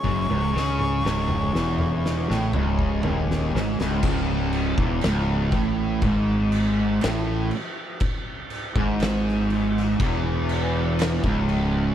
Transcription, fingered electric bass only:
\new Staff \with { instrumentName = "Fingered electric bass" } { \clef bass \time 4/4 \key cis \minor \tempo 4 = 60 fis,,16 cis,,16 cis,8 cis,,8 e,,8. a,,16 cis,,8 dis,,8 gis,,16 cis,,16 | cis,,8. e,,16 cis,,8 a,,8 gis,,4 a,,8 r8 | r8. gis,,4~ gis,,16 e,,4~ e,,16 cis,,8. | }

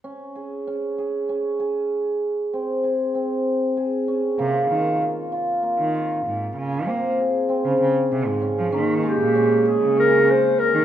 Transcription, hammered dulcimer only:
\new Staff \with { instrumentName = "Hammered dulcimer" } { \time 7/8 \key des \lydian \tempo 4 = 97 des'8 aes'8 des'8 aes'8 des'8 aes'4 | r8 c'8 aes'8 c'4 aes'8 des'8 | bes8 f'8 bes8 f'8 bes8 f'4 | r8 c'8 aes'8 c'4 aes'8 des'8 |
des'8 aes8 des'8 aes'8 des'8 aes'4 | }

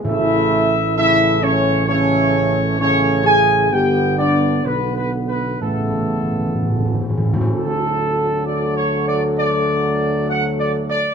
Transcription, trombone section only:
\new Staff \with { instrumentName = "Trombone section" } { \clef bass \time 4/4 \key d \lydian \tempo 4 = 65 <cis a>4 <cis a>4 <cis a>4 <cis a>4 | <d b>4 <d b>4 <cis b>4. r8 | <d fis>1 | }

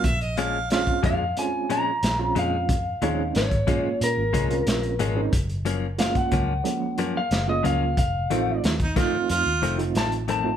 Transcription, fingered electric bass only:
\new Staff \with { instrumentName = "Fingered electric bass" } { \clef bass \time 4/4 \key bes \minor \tempo 4 = 91 bes,,4. f,8 r4 bes,,8 f,8~ | f,8 ees,8 aes,,8 r8 bes,16 aes,,16 c,8 bes,,8 aes,,8 | ges,,4. des,8 r4 ges,,8 des,8 | f,,8 a,,8 ees,8 r8 f,16 ees,16 f,,8 a,,4 | }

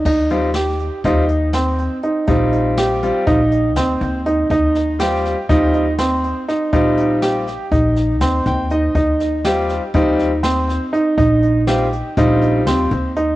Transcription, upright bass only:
\new Staff \with { instrumentName = "Upright bass" } { \clef bass \time 9/8 \key ees \major \tempo 4. = 81 ees,2 ees,2 r8 | bes,,2 bes,,4 ees,8 ees,4 | ees,2 ees,2 r8 | bes,,2 bes,,4 ees,8 ees,4 |
ees,2 ees,2 r8 | bes,,2 bes,,4 ees,8 ees,4 | }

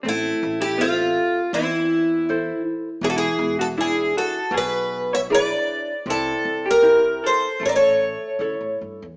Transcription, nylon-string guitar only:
\new Staff \with { instrumentName = "Nylon-string guitar" } { \time 4/4 \key a \phrygian \tempo 4 = 78 a4 <a' c'' e''>4 e4 <e' a' c''>4 | e4 <d' e' b'>4 b,4 <d' e' gis'>4 | c4 <c' e' g'>4 a4 <e' a' cis''>4 | }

